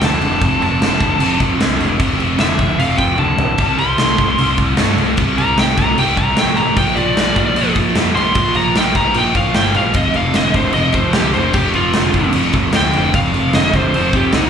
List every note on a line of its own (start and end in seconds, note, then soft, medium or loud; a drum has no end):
0.01 0.19 D2 medium
0.01 0.20 F2 medium
0.01 0.21 D3 medium
0.01 0.61 A5 medium
0.01 snare loud
0.01 crash medium
0.21 0.39 F1 loud
0.21 0.40 F2 medium
0.21 0.40 D3 medium
0.21 crash medium
0.41 0.59 F1 loud
0.41 0.59 F2 medium
0.41 0.59 C3 loud
0.41 kick loud
0.41 crash medium
0.60 0.78 F1 medium
0.60 0.79 F2 medium
0.60 0.79 C3 medium
0.60 1.39 A5 loud
0.60 crash medium
0.80 0.98 F1 medium
0.80 0.99 F2 medium
0.80 0.99 D3 medium
0.80 snare loud
0.80 crash medium
1.00 1.18 F1 loud
1.00 1.18 F2 medium
1.00 1.19 D3 medium
1.00 kick medium
1.00 crash medium
1.19 1.38 F1 medium
1.19 1.37 F2 medium
1.19 1.38 C3 loud
1.19 crash medium
1.39 1.58 F1 medium
1.39 1.57 F2 medium
1.39 1.58 C3 medium
1.39 kick medium
1.39 crash medium
1.58 1.78 C2 medium
1.58 1.76 F2 medium
1.58 1.77 D3 medium
1.58 snare loud
1.58 crash medium
1.78 1.98 F1 medium
1.78 1.97 F2 medium
1.78 1.98 D3 medium
1.78 crash medium
1.98 2.18 F1 loud
1.98 2.16 F2 medium
1.98 2.16 C3 medium
1.98 kick loud
1.98 crash medium
2.18 2.37 F1 medium
2.18 2.36 F2 medium
2.18 2.37 C3 medium
2.18 crash medium
2.37 2.57 F1 loud
2.37 2.56 F2 medium
2.37 2.57 D3 medium
2.37 2.79 E5 loud
2.37 snare loud
2.37 crash medium
2.57 2.77 F1 medium
2.57 2.76 F2 medium
2.57 2.77 D3 medium
2.57 kick medium
2.57 crash medium
2.77 2.96 F1 medium
2.77 2.96 F2 medium
2.77 2.96 C3 medium
2.77 2.98 F5 medium
2.77 crash medium
2.97 3.17 F1 medium
2.97 3.16 F2 medium
2.97 3.17 C3 medium
2.97 3.18 G5 medium
2.97 kick medium
2.97 crash medium
3.17 3.36 D2 medium
3.17 3.37 F2 medium
3.17 3.37 D3 medium
3.17 3.77 A5 medium
3.17 high tom medium
3.38 3.56 A#1 medium
3.38 3.57 F2 medium
3.38 3.58 D3 medium
3.38 floor tom loud
3.58 3.77 C2 loud
3.58 3.77 C3 medium
3.58 3.78 G3 medium
3.58 kick loud
3.58 crash medium
3.78 3.96 C2 medium
3.78 3.97 C3 medium
3.78 3.97 G3 medium
3.78 4.56 C6 loud
3.78 crash medium
3.97 4.16 C2 medium
3.97 4.16 C3 medium
3.97 4.17 A3 loud
3.97 snare loud
3.97 crash medium
4.18 4.36 C2 medium
4.18 4.36 C3 medium
4.18 4.37 A3 medium
4.18 kick medium
4.18 crash medium
4.38 4.56 C2 medium
4.38 4.57 C3 medium
4.38 4.57 G3 loud
4.38 crash medium
4.58 4.76 C2 medium
4.58 4.76 C3 medium
4.58 4.76 G3 medium
4.58 kick medium
4.58 crash medium
4.77 4.96 G2 medium
4.77 4.96 C3 medium
4.77 4.96 A3 medium
4.77 snare loud
4.77 crash medium
4.97 5.15 C2 loud
4.97 5.16 C3 medium
4.97 5.17 A3 medium
4.97 crash medium
5.17 5.36 C2 loud
5.17 5.36 C3 medium
5.17 5.36 G3 loud
5.17 kick loud
5.17 crash medium
5.37 5.55 C2 medium
5.37 5.55 C3 medium
5.37 5.56 G3 medium
5.37 5.57 A#5 loud
5.37 crash medium
5.56 5.75 C2 medium
5.56 5.76 C3 medium
5.56 5.76 A3 medium
5.56 5.78 G5 medium
5.56 snare loud
5.56 crash medium
5.77 5.95 C2 loud
5.77 5.95 C3 medium
5.77 5.96 A3 medium
5.77 5.97 A#5 loud
5.77 kick medium
5.77 crash medium
5.98 6.15 C2 medium
5.98 6.15 C3 medium
5.98 6.15 G3 loud
5.98 6.17 G5 medium
5.98 crash medium
6.16 6.35 C2 medium
6.16 6.35 C3 medium
6.16 6.35 G3 loud
6.16 6.37 A#5 loud
6.16 kick medium
6.16 crash medium
6.36 6.55 A#1 medium
6.36 6.55 C3 medium
6.36 6.55 A3 medium
6.36 6.57 G5 medium
6.36 snare loud
6.36 crash medium
6.56 6.75 A1 medium
6.56 6.74 C3 medium
6.56 6.75 A3 medium
6.56 6.76 A#5 medium
6.56 crash medium
6.75 6.94 A#1 loud
6.75 6.94 A#2 medium
6.75 6.95 F3 medium
6.75 6.96 G5 medium
6.75 kick loud
6.75 crash medium
6.96 7.15 A#1 medium
6.96 7.15 A#2 medium
6.96 7.15 F3 medium
6.96 7.74 D5 loud
6.96 crash medium
7.16 7.34 A#1 medium
7.16 7.34 A#2 medium
7.16 7.34 G3 loud
7.16 snare loud
7.16 crash medium
7.36 7.54 A#1 loud
7.36 7.54 A#2 medium
7.36 7.54 G3 loud
7.36 kick medium
7.36 crash medium
7.56 7.74 A#1 medium
7.56 7.74 A#2 medium
7.56 7.75 F3 medium
7.56 crash medium
7.75 7.94 A#1 loud
7.75 7.94 A#2 medium
7.75 7.95 F3 medium
7.75 kick medium
7.75 crash medium
7.95 8.14 F2 medium
7.95 8.14 A#2 medium
7.95 8.14 G3 medium
7.95 snare loud
7.95 crash medium
8.15 8.33 A#1 loud
8.15 8.34 A#2 medium
8.15 8.34 G3 medium
8.15 8.54 C6 loud
8.15 crash medium
8.35 8.53 A#1 loud
8.35 8.54 A#2 medium
8.35 8.54 F3 medium
8.35 kick loud
8.35 crash medium
8.55 8.73 A#1 medium
8.55 8.73 A#2 medium
8.55 8.74 F3 medium
8.55 8.75 A#5 loud
8.55 crash medium
8.75 8.94 A#1 medium
8.75 8.94 A#2 medium
8.75 8.94 G3 loud
8.75 8.96 G5 medium
8.75 snare loud
8.75 crash medium
8.95 9.13 A#1 medium
8.95 9.13 A#2 medium
8.95 9.14 G3 medium
8.95 9.15 A#5 loud
8.95 kick medium
8.95 crash medium
9.14 9.33 A#1 medium
9.14 9.33 A#2 medium
9.14 9.33 F3 loud
9.14 9.36 G5 loud
9.14 crash medium
9.34 9.53 A#1 medium
9.34 9.53 A#2 medium
9.34 9.53 F3 medium
9.34 9.55 F5 medium
9.34 kick medium
9.34 crash medium
9.54 9.73 G1 medium
9.54 9.73 A#2 medium
9.54 9.74 G3 loud
9.54 9.75 G5 medium
9.54 snare loud
9.54 crash medium
9.74 9.93 A#1 loud
9.74 9.93 A#2 medium
9.74 9.93 G3 medium
9.74 9.95 F5 medium
9.74 crash medium
9.94 10.12 F1 medium
9.94 10.13 F2 medium
9.94 10.13 C3 medium
9.94 10.15 D#5 medium
9.94 kick loud
9.94 crash medium
10.14 10.32 F1 medium
10.14 10.33 F2 medium
10.14 10.33 C3 medium
10.14 10.35 F5 medium
10.14 crash medium
10.34 10.52 F1 medium
10.34 10.53 F2 medium
10.34 10.53 D3 medium
10.34 10.55 D#5 medium
10.34 snare loud
10.34 crash medium
10.54 10.72 F1 medium
10.54 10.73 F2 medium
10.54 10.74 D3 medium
10.54 10.74 C5 loud
10.54 kick medium
10.54 crash medium
10.73 10.92 F1 medium
10.73 10.93 F2 medium
10.73 10.93 C3 loud
10.73 10.94 D#5 loud
10.73 crash medium
10.92 11.12 F1 medium
10.92 11.13 F2 medium
10.92 11.13 C3 medium
10.92 11.14 C5 medium
10.92 kick loud
10.92 crash medium
11.13 11.33 C2 medium
11.13 11.33 F2 medium
11.13 11.33 D3 loud
11.13 11.33 G4 medium
11.13 snare loud
11.13 crash medium
11.34 11.53 F1 medium
11.34 11.53 F2 medium
11.34 11.54 D3 medium
11.34 11.53 C5 loud
11.34 crash medium
11.53 11.72 F1 loud
11.53 11.73 F2 medium
11.53 11.73 C3 loud
11.53 11.73 G4 medium
11.53 kick loud
11.53 crash medium
11.74 11.92 F1 medium
11.74 11.92 F2 medium
11.74 11.93 C3 medium
11.74 12.29 F4 loud
11.74 crash medium
11.93 12.13 F1 medium
11.93 12.12 F2 medium
11.93 12.13 D3 loud
11.93 snare loud
11.93 crash medium
12.13 12.31 F1 medium
12.13 12.32 F2 medium
12.13 12.32 D3 medium
12.13 kick medium
12.13 crash medium
12.33 12.52 F1 medium
12.33 12.51 F2 loud
12.33 12.52 C3 loud
12.33 crash medium
12.53 12.71 F1 medium
12.53 12.72 F2 medium
12.53 12.72 C3 medium
12.53 kick medium
12.53 crash medium
12.72 12.92 D2 loud
12.72 12.91 F2 medium
12.72 12.91 D3 medium
12.72 13.13 G5 loud
12.72 snare loud
12.72 crash medium
12.92 13.12 F1 loud
12.92 13.11 F2 medium
12.92 13.11 D3 medium
12.92 crash medium
13.13 13.31 F1 loud
13.13 13.31 F2 medium
13.13 13.31 C3 medium
13.13 13.53 F5 loud
13.13 kick loud
13.13 crash medium
13.34 13.51 F1 medium
13.34 13.52 F2 medium
13.34 13.52 C3 medium
13.34 crash medium
13.53 13.72 F1 loud
13.53 13.72 F2 medium
13.53 13.72 D3 loud
13.53 13.73 D#5 loud
13.53 snare loud
13.53 crash medium
13.73 13.91 F1 medium
13.73 13.92 F2 medium
13.73 13.92 D3 medium
13.73 14.13 C5 loud
13.73 kick medium
13.73 crash medium
13.94 14.11 F1 loud
13.94 14.12 F2 loud
13.94 14.12 C3 loud
13.94 crash medium
14.13 14.31 F1 medium
14.13 14.32 F2 medium
14.13 14.32 C3 loud
14.13 14.34 G4 loud
14.13 kick medium
14.13 crash medium
14.32 14.50 C2 loud
14.32 14.50 F2 medium
14.32 14.50 D3 medium
14.32 14.50 D#4 loud
14.32 snare loud
14.32 crash medium